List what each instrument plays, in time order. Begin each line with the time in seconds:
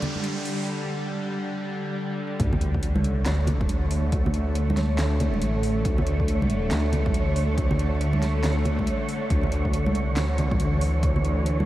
Already playing: synth drone D3 G3, riser
0.02 closed hi-hat, low conga
0.15 high conga
0.24 closed hi-hat
0.45 open hi-hat
2.40 detuned saw bass D2, synth drone D3 A3, synth texture C#5, kick, closed hi-hat, sub drop
2.53 low conga
2.61 closed hi-hat
2.74 kick
2.83 closed hi-hat
2.96 high conga
3.00 detuned saw bass C#2
3.04 closed hi-hat
3.26 detuned saw bass D2, snare, clap, closed hi-hat
3.47 closed hi-hat, low conga
3.61 kick, high conga
3.69 detuned saw bass D2, closed hi-hat
3.91 open hi-hat
4.12 kick, closed hi-hat
4.26 low conga
4.34 detuned saw bass D2, closed hi-hat
4.55 closed hi-hat
4.70 high conga
4.77 snare, closed hi-hat
4.99 detuned saw bass D2, snare, clap, closed hi-hat
5.20 closed hi-hat, low conga
5.34 high conga
5.42 detuned saw bass A1, closed hi-hat
5.63 open hi-hat
5.85 detuned saw bass D2, kick, closed hi-hat
5.98 low conga
6.07 closed hi-hat
6.20 kick
6.28 closed hi-hat
6.42 high conga
6.50 closed hi-hat
6.71 detuned saw bass D2, snare, clap, closed hi-hat
6.92 closed hi-hat, low conga
7.06 kick, high conga
7.14 detuned saw bass D2, closed hi-hat
7.36 open hi-hat
7.58 kick, closed hi-hat
7.71 low conga
7.79 detuned saw bass D2, closed hi-hat
8.01 closed hi-hat
8.13 high conga
8.22 snare, closed hi-hat
8.44 detuned saw bass D2, snare, clap, closed hi-hat
8.65 closed hi-hat, low conga
8.79 kick, high conga
8.87 closed hi-hat
9.09 open hi-hat
9.30 detuned saw bass D2, synth drone E3, kick, closed hi-hat
9.43 low conga
9.52 closed hi-hat
9.65 kick
9.73 closed hi-hat
9.86 detuned saw bass C#2, high conga
9.95 closed hi-hat
10.17 detuned saw bass D2, snare, clap, closed hi-hat
10.38 closed hi-hat, low conga
10.51 kick, high conga
10.60 detuned saw bass D2, closed hi-hat
10.81 open hi-hat
11.03 kick, closed hi-hat
11.16 low conga
11.25 detuned saw bass D2, closed hi-hat
11.46 closed hi-hat
11.60 high conga